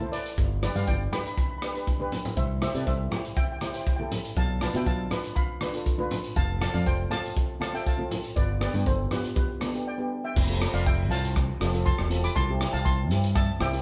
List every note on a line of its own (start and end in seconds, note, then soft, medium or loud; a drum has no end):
0.00 0.38 E4 medium
0.00 0.38 A4 medium
0.00 0.39 C5 medium
0.00 0.11 E5 medium
0.00 0.11 A5 medium
0.00 high conga medium
0.12 0.59 B4 medium
0.12 0.59 D5 medium
0.12 closed hi-hat medium
0.26 closed hi-hat medium
0.38 0.67 G1 loud
0.38 kick loud
0.38 closed hi-hat medium
0.63 0.70 D4 medium
0.63 0.71 G4 medium
0.63 0.75 B4 medium
0.63 0.71 B4 medium
0.63 0.75 D5 medium
0.63 cross-stick medium
0.63 closed hi-hat medium
0.63 low conga medium
0.75 0.85 G2 medium
0.75 0.98 D4 medium
0.75 0.98 G4 medium
0.75 0.99 B4 medium
0.75 0.86 D5 medium
0.75 0.87 F5 medium
0.75 closed hi-hat medium
0.75 high conga medium
0.87 1.07 G1 medium
0.87 1.11 D5 medium
0.87 1.11 G5 medium
0.87 kick medium
0.87 closed hi-hat medium
0.87 low conga medium
1.12 1.42 D4 medium
1.12 1.43 G4 medium
1.12 1.44 B4 medium
1.12 1.20 G5 medium
1.12 1.20 B5 medium
1.12 cross-stick medium
1.12 closed hi-hat medium
1.12 low conga medium
1.21 1.26 B5 medium
1.26 1.33 B5 medium
1.26 closed hi-hat medium
1.34 1.41 B5 medium
1.34 kick loud
1.34 closed hi-hat medium
1.42 1.50 B5 medium
1.51 1.57 B5 medium
1.58 1.70 D4 medium
1.58 1.64 B5 medium
1.62 1.70 G4 medium
1.62 1.71 B4 medium
1.62 1.72 B5 medium
1.62 cross-stick medium
1.62 closed hi-hat medium
1.74 1.90 D4 medium
1.74 1.90 G4 medium
1.74 1.91 B4 medium
1.74 1.80 B5 medium
1.74 closed hi-hat medium
1.87 kick medium
1.87 closed hi-hat medium
1.87 high conga medium
2.00 2.37 D4 medium
2.00 2.37 G4 medium
2.00 2.38 B4 medium
2.00 high conga medium
2.12 closed hi-hat medium
2.12 low conga medium
2.25 closed hi-hat medium
2.25 low conga medium
2.36 2.66 C2 loud
2.36 2.60 C5 medium
2.36 2.60 E5 medium
2.36 kick medium
2.36 closed hi-hat medium
2.61 2.70 E4 medium
2.61 2.70 G4 medium
2.61 2.74 C5 medium
2.61 2.70 C5 medium
2.61 2.76 E5 medium
2.61 cross-stick medium
2.61 closed hi-hat medium
2.61 low conga medium
2.74 2.84 C3 medium
2.74 2.97 E4 medium
2.74 2.97 G4 medium
2.74 2.98 A4 medium
2.74 2.86 B4 medium
2.74 2.86 D5 medium
2.74 closed hi-hat medium
2.87 3.06 C2 medium
2.87 3.33 C5 medium
2.87 3.36 E5 medium
2.87 kick medium
2.87 closed hi-hat medium
3.10 3.41 E4 medium
3.10 3.42 G4 medium
3.10 3.42 C5 medium
3.10 cross-stick medium
3.10 closed hi-hat medium
3.10 high conga medium
3.10 low conga medium
3.25 closed hi-hat medium
3.36 3.44 E5 medium
3.36 3.43 G5 medium
3.36 kick loud
3.36 closed hi-hat medium
3.44 3.51 G5 medium
3.52 3.57 G5 medium
3.59 3.69 E4 medium
3.59 3.70 G4 medium
3.59 3.65 G5 medium
3.59 cross-stick medium
3.59 closed hi-hat medium
3.59 high conga medium
3.63 3.70 C5 medium
3.63 3.73 G5 medium
3.74 3.89 E4 medium
3.74 3.90 G4 medium
3.74 3.90 C5 medium
3.74 3.80 G5 medium
3.74 closed hi-hat medium
3.81 3.88 G5 medium
3.86 3.95 G5 medium
3.86 kick medium
3.86 closed hi-hat medium
3.96 4.37 E4 medium
3.96 4.37 G4 medium
3.96 4.04 G5 medium
3.96 high conga medium
4.01 4.37 A4 medium
4.12 closed hi-hat medium
4.12 low conga medium
4.25 closed hi-hat medium
4.36 4.66 B1 loud
4.36 4.60 F5 medium
4.36 4.61 A5 medium
4.36 kick loud
4.36 closed hi-hat medium
4.61 4.69 D4 medium
4.61 4.70 F4 medium
4.61 4.70 B4 medium
4.61 4.74 F5 medium
4.61 4.74 A5 medium
4.61 cross-stick medium
4.61 closed hi-hat medium
4.61 low conga medium
4.74 4.84 B2 medium
4.74 4.96 D4 medium
4.74 4.97 F4 medium
4.74 4.97 B4 medium
4.74 4.81 E5 medium
4.74 4.81 G5 medium
4.74 closed hi-hat medium
4.74 high conga medium
4.86 5.06 B1 medium
4.86 5.33 F5 medium
4.86 5.38 A5 medium
4.86 kick medium
4.86 closed hi-hat medium
5.11 5.41 D4 medium
5.11 5.42 F4 medium
5.11 5.42 B4 medium
5.11 cross-stick medium
5.11 closed hi-hat medium
5.11 high conga medium
5.11 low conga medium
5.24 closed hi-hat medium
5.36 6.08 F5 medium
5.36 6.07 B5 medium
5.36 kick medium
5.36 closed hi-hat medium
5.61 5.69 D4 medium
5.61 5.69 F4 medium
5.61 5.70 B4 medium
5.61 cross-stick medium
5.61 closed hi-hat medium
5.61 high conga medium
5.73 5.88 D4 medium
5.73 5.89 F4 medium
5.73 5.90 A4 medium
5.73 closed hi-hat medium
5.86 kick medium
5.86 closed hi-hat medium
5.98 6.36 D4 medium
5.98 6.36 F4 medium
5.98 6.37 B4 medium
5.98 high conga medium
6.11 closed hi-hat medium
6.11 low conga medium
6.24 closed hi-hat medium
6.36 6.66 F1 loud
6.36 6.60 F5 medium
6.36 6.60 A5 loud
6.36 kick loud
6.36 closed hi-hat medium
6.60 6.69 C4 medium
6.60 6.69 F4 medium
6.60 6.70 A4 medium
6.60 6.73 F5 medium
6.60 6.75 A5 loud
6.60 cross-stick medium
6.60 closed hi-hat medium
6.60 low conga medium
6.73 6.84 F2 medium
6.73 6.96 C4 medium
6.73 6.97 F4 medium
6.73 6.97 A4 medium
6.73 6.85 D5 medium
6.73 6.87 F5 medium
6.73 closed hi-hat medium
6.73 high conga medium
6.86 7.06 F1 medium
6.86 7.10 C5 medium
6.86 7.12 G5 medium
6.86 kick medium
6.86 closed hi-hat medium
7.10 7.41 C4 medium
7.10 7.41 F4 medium
7.10 7.42 A4 medium
7.10 7.58 F5 medium
7.10 7.58 A5 loud
7.10 cross-stick medium
7.10 closed hi-hat medium
7.10 high conga medium
7.10 low conga medium
7.25 closed hi-hat medium
7.37 kick loud
7.37 closed hi-hat medium
7.60 7.68 C4 medium
7.60 7.69 F4 medium
7.60 7.69 A4 medium
7.60 7.73 F5 medium
7.60 7.74 A5 loud
7.60 cross-stick medium
7.60 closed hi-hat medium
7.60 high conga medium
7.73 7.89 C4 medium
7.73 7.89 F4 medium
7.73 7.89 A4 medium
7.73 7.86 E5 medium
7.73 7.86 G5 medium
7.73 closed hi-hat medium
7.87 8.34 F5 medium
7.87 8.38 A5 medium
7.87 kick medium
7.87 closed hi-hat medium
7.98 8.36 C4 medium
7.98 8.36 F4 medium
7.98 8.37 A4 medium
7.98 high conga medium
8.11 closed hi-hat medium
8.11 low conga medium
8.24 closed hi-hat medium
8.36 8.66 G1 loud
8.36 8.60 B4 medium
8.36 8.60 D5 medium
8.36 kick loud
8.36 closed hi-hat medium
8.60 8.68 B3 medium
8.60 8.69 D4 medium
8.60 8.69 G4 medium
8.60 8.85 B4 medium
8.60 8.87 D5 medium
8.60 cross-stick medium
8.60 closed hi-hat medium
8.60 low conga medium
8.74 8.84 G2 medium
8.74 8.96 B3 medium
8.74 8.97 D4 medium
8.74 8.97 G4 medium
8.74 closed hi-hat medium
8.74 high conga medium
8.86 9.06 G1 medium
8.86 9.10 A4 medium
8.86 9.10 C5 medium
8.86 kick medium
8.86 closed hi-hat medium
8.86 low conga medium
9.11 9.41 B3 medium
9.11 9.42 D4 medium
9.11 9.42 F4 medium
9.11 9.35 G4 medium
9.11 9.35 B4 medium
9.11 cross-stick medium
9.11 closed hi-hat medium
9.11 high conga medium
9.11 low conga medium
9.24 closed hi-hat medium
9.36 10.08 G4 soft
9.36 10.07 B4 medium
9.36 kick loud
9.36 closed hi-hat medium
9.60 9.69 B3 medium
9.60 9.69 D4 medium
9.60 9.70 A4 medium
9.60 cross-stick medium
9.60 closed hi-hat medium
9.60 high conga medium
9.73 9.89 B3 medium
9.73 9.89 D4 medium
9.73 9.89 G4 medium
9.73 closed hi-hat medium
9.87 10.22 D5 medium
9.87 10.24 G5 medium
9.98 10.36 B3 medium
9.98 10.36 D4 medium
9.98 10.37 G4 medium
10.24 10.71 E5 medium
10.24 10.76 G5 medium
10.36 10.65 F1 loud
10.36 kick loud
10.36 crash loud
10.48 10.56 C4 medium
10.48 10.56 F4 medium
10.48 10.57 A4 medium
10.60 10.91 C4 medium
10.60 10.91 F4 medium
10.60 10.92 A4 medium
10.60 cross-stick loud
10.60 closed hi-hat medium
10.74 11.11 F1 medium
10.74 10.85 D5 medium
10.74 10.85 F5 medium
10.74 closed hi-hat medium
10.86 11.10 E5 medium
10.86 11.12 G5 loud
10.86 kick medium
10.86 closed hi-hat medium
11.10 11.49 C2 medium
11.10 11.41 C4 medium
11.10 11.41 F4 medium
11.10 11.42 C5 medium
11.10 11.82 F5 medium
11.10 11.84 A5 loud
11.10 closed hi-hat medium
11.24 closed hi-hat medium
11.36 kick loud
11.36 cross-stick medium
11.36 closed hi-hat medium
11.60 11.90 F1 loud
11.60 11.68 C4 medium
11.60 11.69 F4 medium
11.60 11.69 A4 medium
11.60 cross-stick medium
11.60 closed hi-hat medium
11.73 11.96 C4 medium
11.73 11.96 F4 medium
11.73 11.97 A4 medium
11.73 closed hi-hat medium
11.85 12.21 A5 medium
11.85 12.25 C6 medium
11.85 kick medium
11.85 closed hi-hat medium
11.98 12.27 E1 medium
11.98 cross-stick medium
12.10 12.33 C4 medium
12.10 12.34 F4 medium
12.10 12.34 A4 medium
12.10 closed hi-hat medium
12.24 12.30 B5 medium
12.24 12.29 D6 loud
12.24 closed hi-hat medium
12.36 12.65 C2 loud
12.36 12.71 A5 medium
12.36 12.75 C6 loud
12.36 kick loud
12.36 closed hi-hat medium
12.49 12.56 C4 medium
12.49 12.57 E4 medium
12.49 12.57 G4 medium
12.61 12.91 C4 medium
12.61 12.92 E4 medium
12.61 12.92 G4 medium
12.61 cross-stick medium
12.61 closed hi-hat medium
12.73 13.11 C2 medium
12.73 12.79 F5 medium
12.73 12.78 A5 loud
12.73 closed hi-hat medium
12.85 13.32 A5 medium
12.85 13.37 C6 loud
12.85 kick medium
12.85 closed hi-hat medium
13.10 13.49 G2 loud
13.10 13.41 C4 medium
13.10 13.41 E4 medium
13.10 13.42 G4 medium
13.10 closed hi-hat medium
13.24 closed hi-hat medium
13.35 13.59 E5 medium
13.35 13.61 A5 loud
13.35 kick loud
13.35 cross-stick medium
13.35 closed hi-hat medium
13.59 13.82 C2 loud
13.59 13.68 C4 medium
13.59 13.68 E4 medium
13.59 13.69 G4 medium
13.59 13.82 E5 medium
13.59 13.82 G5 loud
13.59 cross-stick medium
13.59 closed hi-hat medium
13.72 13.82 C4 medium
13.72 13.82 E4 medium
13.72 13.82 G4 medium
13.72 closed hi-hat medium